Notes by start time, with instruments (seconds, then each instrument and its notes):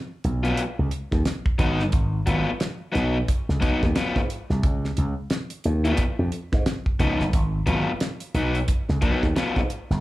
0.24 slap bass B1, closed hi-hat
0.43 overdriven electric guitar F#3 B3 F4, closed hi-hat
0.57 closed hi-hat
0.79 slap bass C#2
0.91 closed hi-hat
1.11 slap bass D#2, kick, snare
1.25 snare, closed hi-hat
1.46 kick
1.58 slap bass G#1, overdriven electric guitar F#3 B3 D#4, kick, closed hi-hat
1.79 slap bass G1, snare
1.92 slap bass G#1, kick, closed hi-hat
2.26 slap bass G#1, overdriven electric guitar F#3 B3 F4, closed hi-hat
2.60 snare, closed hi-hat
2.92 slap bass B1, overdriven electric guitar F#3 B3 D#4, snare, closed hi-hat
3.28 kick, closed hi-hat
3.49 slap bass C#2, snare
3.60 overdriven electric guitar F#3 B3 D#4, kick, closed hi-hat
3.82 slap bass D#2, kick, snare
3.95 overdriven electric guitar F#3 B3 F4, snare, closed hi-hat
4.16 slap bass G#2, kick, snare
4.30 closed hi-hat
4.50 slap bass C2, snare
4.63 slap bass C#2, kick, closed hi-hat
4.84 snare
4.97 slap bass C#2, closed hi-hat
5.30 snare, closed hi-hat
5.50 closed hi-hat
5.64 slap bass D#2, closed hi-hat
5.84 overdriven electric guitar F3 B3 F4, closed hi-hat
5.97 kick, closed hi-hat
6.19 slap bass F2
6.32 closed hi-hat
6.52 slap bass G#2, kick, snare
6.66 snare, closed hi-hat
6.86 kick
7.00 slap bass C#2, overdriven electric guitar F3 B3 D#4, kick, closed hi-hat
7.20 slap bass G1, snare
7.33 slap bass G#1, kick, closed hi-hat
7.66 slap bass G#1, overdriven electric guitar F#3 B3 F4, closed hi-hat
8.00 snare, closed hi-hat
8.20 closed hi-hat
8.34 slap bass B1, overdriven electric guitar F#3 B3 D#4, closed hi-hat
8.55 closed hi-hat
8.68 kick, closed hi-hat
8.89 slap bass C#2, snare
9.01 overdriven electric guitar F#3 B3 D#4, kick, closed hi-hat
9.23 slap bass D#2, kick, snare
9.36 overdriven electric guitar F#3 B3 F4, snare, closed hi-hat
9.56 slap bass G#2, kick, snare
9.70 closed hi-hat
9.90 slap bass G1, snare